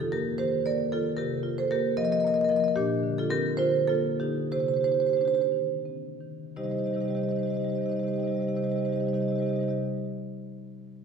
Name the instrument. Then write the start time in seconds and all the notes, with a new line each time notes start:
marimba
Already playing: C3 D#3
0.00 F4 A4
0.12 A#3 G4 A#4
0.38 D#3 G4 C5
0.66 A#3 A#4 D5
0.92 D#3 F4 A4
1.17 C3 G4 A#4
1.43 F4
1.58 A4 C5
1.71 A#3 G4 A#4
1.97 F3 A#4 D#5
2.04 A#4 D#5
2.12 A#4 D#5
2.20 A#4 D#5
2.25 A#3 A#4 D#5
2.34 A#4 D#5
2.41 A#4 D#5
2.49 F3 A#4 D#5
2.56 A#4 D#5
2.64 D#5
2.68 A#4
2.76 A#2 D4 G4
3.03 D3
3.18 F4 A4
3.30 C4 G4 A#4
3.57 D3 F4 C5
3.88 A#3 F4 A4
4.19 D3 D#4 G4
4.52 C3 G4 C5
4.59 G4 C5
4.66 G4 C5
4.74 G4 C5
4.81 D#4 G4 C5
4.88 G4
4.92 G4 C5
5.00 G4 C5
5.06 G4 C5
5.13 G4 C5
5.19 D4 C5
5.25 G4 C5
5.34 G4 C5
5.41 G4 C5
5.52 D#3
5.85 C4
6.21 D#3
6.56 C3 G3 D#4 G4 C5 D#5
6.64 C3 G3 D#4 G4 C5 D#5
6.70 D#4 G4 C5 D#5
6.74 C3 G3 D#5
6.79 D#4 G4 C5
6.83 C3 G3 C5 D#5
6.87 D#4 G4 D#5
6.92 C3 G3 D#4 G4 C5
6.98 G3 D#4 G4 C5 D#5
7.04 C3 G4 D#5
7.09 G3 D#4 C5 D#5
7.15 C3 G3 D#4 G4 C5 D#5
7.22 C3 D#4 G4 C5 D#5
7.27 G3 D#4 G4 C5 D#5
7.32 C3 G4 D#5
7.36 G3 D#4 C5
7.42 C3 G3 G4 D#5
7.46 D#4 C5 D#5
7.50 C3 D#4 G4 C5
7.55 G3 G4 D#5
7.60 C3 D#4 C5 D#5
7.64 C3 G3 D#4 G4
7.68 G4 C5 D#5
7.74 C3 G3 D#4 C5 D#5
7.78 G3 D#4 G4 D#5
7.84 C3 G4 C5
7.89 G3 D#4 G4 C5 D#5
7.95 C3 G3 D#4 D#5
7.99 G4 C5 D#5
8.04 C3 D#4 G4
8.08 G3 D#4 C5 D#5
8.13 C3 G4 C5 D#5
8.18 G3 D#4 G4
8.22 C3 C5 D#5
8.26 G3 D#4 G4 D#5
8.31 C3 D#4 G4 C5
8.36 C3 G3 D#5
8.40 D#4 G4 C5 D#5
8.45 C3 G3 D#4 C5
8.49 G4 D#5
8.54 C3 G3 D#4 G4 C5 D#5
8.62 C3 G3 D#4 G4 C5 D#5
8.69 G3 D#4 G4 C5 D#5
8.76 C3 D#4 G4 C5 D#5
8.81 G3 D#4 D#5
8.85 C3 G3 G4 C5 D#5
8.93 C3 D#4 G4 C5 D#5
8.97 G3 D#4 G4 C5
9.02 C3 G3 D#5
9.07 D#4 G4 C5 D#5
9.13 C3 G3 D#4 G4 C5 D#5
9.20 C3 G3 D#4 G4 C5 D#5
9.28 C3 G3 D#4 G4 C5 D#5
9.35 D#4 G4 C5 D#5
9.40 C3 G3 G4 D#5
9.46 D#4 G4 C5 D#5
9.50 C3 G3 D#4 C5
9.56 C3 G3 G4 D#5
9.60 D#4 G4 C5 D#5
9.67 C3 G3 D#4 G4 C5 D#5